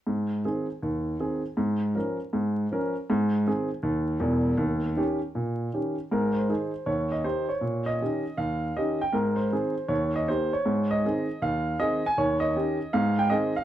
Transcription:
0.07 G#2
0.45 D#3 C4 G#4
0.82 D#2
1.20 D#3 C4 G#4
1.57 G#2
1.95 F3 C#4 A#4
2.33 G#2
2.71 F3 C#4 A#4
3.10 G#2
3.47 D#3 C4 G#4
3.83 D#2
4.20 E1 E2
4.57 D#2
4.97 D#3 C#4 G4
5.35 A#2
5.73 D#3 C#4 G4
6.11 G#2 A#4
6.33 C5
6.49 D#3 D#4 G#4
6.86 D#2 C#5
7.12 D#5
7.24 D#3 D#4 G4 C5
7.49 C#5
7.61 A#2
7.86 D#5
8.02 D#3 C#4 G4
8.37 D#2 F5
8.76 D#3 C#4 G4 D#5
9.01 G5
9.12 G#2 A#4
9.36 C5
9.52 D#3 C4 G#4
9.88 D#2 C#5
10.16 D#5
10.28 D#3 A#3 G4 C5
10.53 C#5
10.66 G#2
10.91 D#5
11.05 D#3 C4 G#4
11.42 D#2 F5
11.80 D#3 C4 G#4 D#5
12.06 G#5
12.18 D#2 C#5
12.40 D#5
12.56 D#3 C#4 G4
12.93 G#2 F5
13.19 G5
13.30 D#3 C4 G#4 D#5
13.56 F5

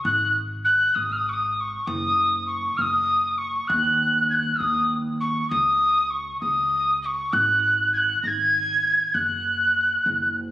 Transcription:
0.04 G#1 F#6
0.64 F#6
0.95 G#1 D#6
1.12 F6
1.16 D#6
1.29 C#6
1.33 D#6
1.56 D#6
1.60 C#6
1.86 F#1 D#6
2.47 C#6
2.77 F#1 F6
2.81 D#6
3.38 C#6
3.67 D#2 F#6
4.29 G#6
4.34 F#6
4.59 D#2 D#6
5.20 C#6
5.49 C#2 D#6
6.10 C#6
6.40 C#2 D#6
7.02 C#6 D#6
7.32 G#1 F#6
7.93 G#6
7.97 F#6
8.23 G#1 A#6
8.27 G#6
9.14 F#1 F#6
10.06 F#1

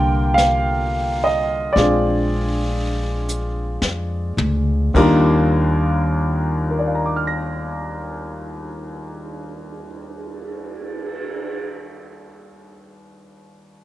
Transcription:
Already playing: C2 D3 G3 A#3 F4 A#4 G5
0.34 F5, brush sweep, snare, hi-hat pedal
1.24 D#5
1.73 A#1 G#3 C4 G#4 D5
1.77 D4 F4, brush sweep, snare
3.29 hi-hat pedal
3.82 F2, snare
4.37 D2, mid tom
4.94 D#2 D#3 G3 D4 F4 A#4, kick, ride
6.10 cymbal swell
6.71 A#4
6.79 D5
6.87 F5
6.95 A#5
7.06 D6
7.16 F6
7.27 A#6

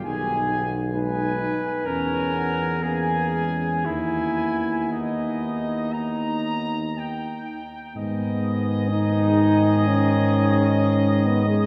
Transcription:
0.04 B1 D#3 D#4 G#4 G#5
0.49 B3
0.94 G#3 D#4 B4 G#5
1.85 E2 C#4 A#4 G#5
2.33 B3
2.82 A#3 C#4 G#4 G#5
3.34 G#3
3.85 D#2 B3 D#4 E4 G#5
4.90 D#4 D#5
5.92 D#4 A#5
6.98 G5
7.95 G#2 D#3 B3 G#4 D#5
8.90 D#4
9.87 C#4
11.26 B3
11.48 G#3

